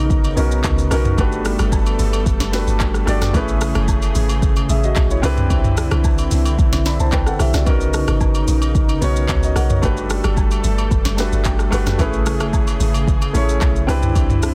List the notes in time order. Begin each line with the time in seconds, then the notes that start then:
Already playing: A#1 C#3 B3 C#4 D#4 F#4 A#4
0.10 kick, shaker
0.24 high agogo, shaker
0.36 B1 B3 C#4 D#4 F#4 A#4, open hi-hat, shaker
0.51 shaker
0.64 C#2, kick, clap, high agogo, low woodblock, shaker
0.78 shaker
0.90 B1 B3 C#4 D#4 F#4 A#4, cross-stick, open hi-hat, high agogo, shaker
1.05 mid tom, shaker
1.17 G1 G3 A3 D4 F#4 G4 A4 B4, kick, high agogo, shaker
1.32 shaker
1.45 cross-stick, open hi-hat, shaker
1.59 G1, cross-stick, high agogo, shaker
1.72 kick, low woodblock, shaker
1.86 high agogo, shaker
1.99 G1, open hi-hat, shaker
2.13 high agogo, shaker
2.26 F#1, kick, shaker
2.40 F#1, snare, high agogo, shaker
2.52 A3 D4 F#4 G4 B4, snare, open hi-hat, shaker
2.67 G1, shaker
2.80 kick, clap, high agogo, low woodblock, shaker
2.94 cross-stick, shaker
3.06 G1 A3 D4 F#4 G4 D5, cross-stick, open hi-hat, high agogo, shaker
3.21 cross-stick, snare, mid tom, shaker
3.33 A1 C#3 A3 C#4 E4 G#4 B4, kick, high agogo, shaker
3.48 shaker
3.61 cross-stick, open hi-hat, shaker
3.75 F#1, cross-stick, high agogo, shaker
3.88 kick, low woodblock, shaker
4.02 high agogo, shaker
4.15 G#1, open hi-hat, shaker
4.29 high agogo, shaker
4.42 kick, shaker
4.56 high agogo, shaker
4.69 A1 G#4 E5, open hi-hat, shaker
4.83 F#4 D#5, shaker
4.96 B1, kick, clap, high agogo, low woodblock, shaker
5.11 E4 C#5, shaker
5.22 C2 D3 C4 D4 E4 G4 B4, cross-stick, open hi-hat, high agogo, shaker
5.37 mid tom, shaker
5.50 C2, kick, high agogo, shaker
5.64 mid tom, shaker
5.77 cross-stick, open hi-hat, shaker
5.91 C2, cross-stick, high agogo, shaker
6.04 kick, low woodblock, shaker
6.18 high agogo, shaker
6.31 C2, open hi-hat, shaker
6.45 high agogo, shaker
6.59 B1, kick, shaker
6.73 B1, snare, high agogo, shaker
6.86 D5 B5, snare, open hi-hat, shaker
6.99 C2 C5 A5, shaker
7.12 C2 B4 G5, kick, clap, high agogo, low woodblock, shaker
7.27 A4 F#5, cross-stick, shaker
7.39 B1 G4 E5, cross-stick, open hi-hat, high agogo, shaker
7.53 C2 F#4 D5, cross-stick, snare, shaker
7.65 B1 C#3 B3 C#4 D#4 F#4 A#4, kick, high agogo, shaker
7.81 shaker
7.94 cross-stick, open hi-hat, shaker
8.08 G#1, cross-stick, high agogo, shaker
8.21 kick, low woodblock, shaker
8.35 high agogo, shaker
8.48 A#1, open hi-hat, shaker
8.62 high agogo, shaker
8.75 kick, shaker
8.89 high agogo, shaker
9.01 B1 B3 C#4 D#4 F#4 C#5, open hi-hat, shaker
9.16 shaker
9.29 C#2, kick, clap, high agogo, low woodblock, shaker
9.43 F#4 D#5, shaker
9.56 B1 A#4 F#5, cross-stick, open hi-hat, high agogo, shaker
9.70 C#5, mid tom, shaker
9.82 G1 G3 A3 D4 F#4 G4 A4 B4, kick, high agogo, shaker
9.97 shaker
10.10 cross-stick, open hi-hat, shaker
10.24 G1, cross-stick, high agogo, shaker
10.37 kick, low woodblock, shaker
10.51 high agogo, shaker
10.64 G1, open hi-hat, shaker
10.78 high agogo, shaker
10.91 F#1, kick, shaker
11.05 F#1, snare, high agogo, shaker
11.17 A3 D4 F#4 G4 B4 A5, snare, open hi-hat, shaker
11.32 G1, shaker
11.45 G5, kick, clap, high agogo, low woodblock, shaker
11.59 cross-stick, shaker
11.71 G1 A3 D4 F#4 G4 B4 F#5, cross-stick, open hi-hat, high agogo, shaker
11.86 cross-stick, snare, mid tom, shaker
11.98 A1 C#3 A3 C#4 E4 G#4 B4, kick, high agogo, shaker
12.13 shaker
12.26 cross-stick, open hi-hat, shaker
12.40 F#1, cross-stick, high agogo, shaker
12.53 kick, low woodblock, shaker
12.67 high agogo, shaker
12.80 G#1, open hi-hat, shaker
12.94 high agogo, shaker
13.08 kick, shaker
13.22 high agogo, shaker
13.33 A1 A3 C#4 E4 G#4 C#5, open hi-hat, shaker
13.49 shaker
13.61 B1, kick, clap, high agogo, low woodblock, shaker
13.76 shaker
13.87 C2 D3 C4 D4 E4 G4 B4, cross-stick, open hi-hat, high agogo, shaker
14.03 mid tom, shaker
14.16 C2, kick, high agogo, shaker
14.30 mid tom, shaker
14.43 cross-stick, open hi-hat, shaker